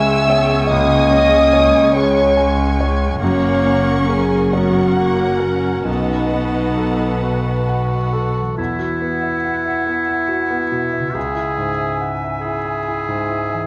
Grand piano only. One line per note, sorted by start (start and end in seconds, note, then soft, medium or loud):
0.00 0.66 C#2 medium
0.00 0.72 C#4 medium
0.00 0.11 G#4 medium
0.00 0.30 C#5 medium
0.00 0.54 G#5 medium
0.30 0.95 C#5 medium
0.71 3.18 C#2 medium
1.10 1.78 C#4 soft
1.53 2.20 C#5 medium
1.96 2.62 G#4 medium
2.37 3.04 G#5 medium
2.81 3.22 C#5 medium
3.24 5.85 F#2 medium
3.66 4.36 C#4 medium
4.10 4.80 A#4 soft
4.53 5.25 C#5 soft
4.97 5.69 F#5 medium
5.40 5.87 A#4 soft
5.85 8.53 B1 medium
6.33 7.07 B3 soft
6.77 7.51 A4 soft
7.23 7.96 B4 soft
7.69 8.41 F#5 soft
8.13 8.58 A4 soft
8.58 11.12 E2 medium
8.79 9.14 F#4 soft
9.02 9.36 B3 soft
9.23 9.58 E5 soft
9.44 9.66 F#5 soft
9.65 10.00 E5 soft
9.87 10.22 B3 soft
10.09 10.43 E5 soft
10.28 10.64 F#4 soft
10.51 10.85 B3 soft
10.72 11.07 B2 soft
10.93 11.15 E5 soft
11.14 13.65 C#2 medium
11.35 11.70 E4 soft
11.58 11.92 G#2 soft
11.78 12.13 E5 soft
12.01 12.22 F#5 soft
12.24 12.57 E5 soft
12.45 12.78 E4 soft
12.65 12.99 E5 soft
12.88 13.21 E4 soft
13.09 13.42 G#2 soft
13.29 13.62 E4 soft
13.50 13.67 E5 soft